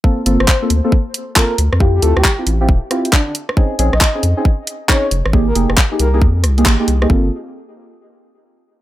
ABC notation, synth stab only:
X:1
M:4/4
L:1/16
Q:"Swing 16ths" 1/4=136
K:F
V:1 name="Synth stab"
[B,CFA] z [B,CFA] z2 [B,CFA] z [B,CFA] z4 [B,CFA] z3 | [CEFG] z [CEFG] z2 [CEFG] z [CEFG] z2 [CEFG] z4 z | [C_D_E_A] z [CDEA] z2 [CDEA] z [CDEA] z4 [CDEA] z3 | [B,_EG_A] z [B,EGA] z2 [B,EGA] z [B,EGA] z3 [B,EGA] z [B,EGA] z [B,EGA] |
[B,CFA]2 z12 z2 |]